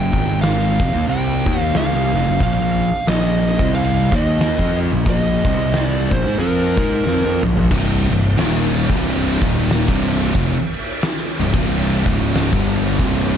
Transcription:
Already playing: picked electric bass F#1, distorted electric guitar F#2 C#3 F#3, lead electric guitar G5
0.13 picked electric bass G#1, distorted electric guitar G#2 D#3 G#3, kick
0.42 lead electric guitar F5, snare, open hi-hat
0.80 picked electric bass F1, distorted electric guitar F2 C3, kick
0.93 picked electric bass D#2, distorted electric guitar D#3 A#3
1.07 picked electric bass C2, distorted electric guitar C3 G3 C4, lead electric guitar G5, open hi-hat
1.46 picked electric bass D#2, distorted electric guitar D#3 A#3 D#4, kick
1.61 lead electric guitar F5
1.73 picked electric bass C#2, distorted electric guitar C#3 G#3, lead electric guitar F5, snare, open hi-hat
1.93 picked electric bass C2, distorted electric guitar C3 G3
2.13 picked electric bass F1, distorted electric guitar F2 C3
2.27 picked electric bass F#1, distorted electric guitar F#2 C#3
2.40 picked electric bass A#1, distorted electric guitar A#2 F3, lead electric guitar F5, kick, open hi-hat
2.60 picked electric bass A#1, distorted electric guitar A#2 F3
3.07 picked electric bass A#1, distorted electric guitar A#2 F3 A#3, lead electric guitar D#5, snare, open hi-hat
3.59 picked electric bass C2, distorted electric guitar C3 G3 C4, kick
3.73 lead electric guitar F5, open hi-hat
4.11 picked electric bass D#2, distorted electric guitar D#3 A#3 D#4, kick
4.16 lead electric guitar D#5
4.39 snare, open hi-hat
4.59 picked electric bass F2, distorted electric guitar F3 C4 F4, kick
4.92 picked electric bass A#1, distorted electric guitar A#2 F3
5.05 picked electric bass A#1, distorted electric guitar A#2 F3 A#3, kick, open hi-hat
5.10 lead electric guitar D#5
5.45 picked electric bass C2, distorted electric guitar C3 G3 C4, kick
5.72 snare, open hi-hat
5.81 lead electric guitar D5
6.11 picked electric bass A#1, distorted electric guitar A#2 F3, lead electric guitar C5, kick
6.25 picked electric bass G#2, distorted electric guitar G#3 D#4, snare
6.38 picked electric bass F2, distorted electric guitar F3 C4 F4, lead electric guitar A#4, open hi-hat
6.77 picked electric bass G#2, distorted electric guitar G#3 D#4 G#4, kick
7.05 picked electric bass F2, distorted electric guitar F3 C4, snare
7.25 picked electric bass F2, distorted electric guitar F3 C4
7.43 picked electric bass A#1, distorted electric guitar A#2 F3, mid tom
7.57 picked electric bass A#1, distorted electric guitar A#2 F3, floor tom
7.71 picked electric bass C1, distorted electric guitar C2 G2 C3, kick, crash
8.10 picked electric bass C1, distorted electric guitar C2 G2, crash
8.37 picked electric bass D#1, distorted electric guitar D#2 A#2 D#3, snare, crash
8.77 crash
8.90 picked electric bass C1, distorted electric guitar C2 G2 C3, kick
9.03 crash
9.42 picked electric bass D#1, distorted electric guitar D#2 A#2 D#3, kick, crash
9.69 snare, crash
9.88 picked electric bass C1, distorted electric guitar C2 G2 C3, kick
10.08 crash
10.35 picked electric bass F1, distorted electric guitar F2 C3, kick, crash
10.74 crash
11.01 snare, crash
11.23 snare
11.39 picked electric bass C1, distorted electric guitar C2 G2, crash
11.53 picked electric bass C1, distorted electric guitar C2 G2 C3, kick
11.69 crash
12.05 picked electric bass C#1, distorted electric guitar C#2 G#2 C#3, kick, crash
12.34 snare, crash
12.52 picked electric bass G1, distorted electric guitar G2 D3 G3, kick
12.73 crash
12.99 picked electric bass C1, distorted electric guitar C2 G2 C3, kick, crash

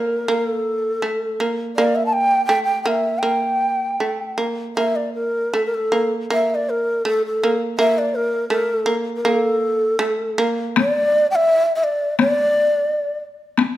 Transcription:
Already playing: shamisen A#3
0.00 shakuhachi A#4
0.28 shamisen A#3
0.37 shakuhachi A4
1.02 shamisen A3
1.40 shamisen A#3
1.76 shamisen A#3, shakuhachi D5
1.95 shakuhachi E5
2.06 shakuhachi A5
2.13 shakuhachi G5
2.45 shamisen A3, shakuhachi G5
2.64 shakuhachi G5
2.83 shamisen A#3, shakuhachi G5
2.87 shakuhachi E5
3.19 shakuhachi G5
3.23 shamisen A#3
4.00 shamisen A3
4.38 shamisen A#3
4.76 shamisen A#3, shakuhachi E5
4.96 shakuhachi D5
5.14 shakuhachi A#4
5.54 shamisen A3, shakuhachi A4
5.66 shakuhachi A#4
5.74 shakuhachi A4
5.92 shamisen A#3
6.30 shamisen A#3, shakuhachi E5
6.50 shakuhachi E5
6.55 shakuhachi D5
6.70 shakuhachi A#4
7.05 shamisen A3, shakuhachi A4
7.26 shakuhachi A4
7.43 shamisen A#3
7.78 shamisen A#3, shakuhachi E5
7.98 shakuhachi D5
8.15 shakuhachi A#4
8.50 shamisen A3, shakuhachi A#4
8.75 shakuhachi A4
8.86 shamisen A#3
9.17 shakuhachi A#4
9.25 shamisen A#3, shakuhachi A4
9.99 shamisen A3
10.38 shamisen A#3
10.77 shakuhachi D5, taiko rim, taiko high
11.31 shakuhachi G5
11.35 shakuhachi E5
11.75 shakuhachi E5
11.84 shakuhachi D5
12.19 shakuhachi D5, taiko rim, taiko high
13.58 taiko rim, taiko high

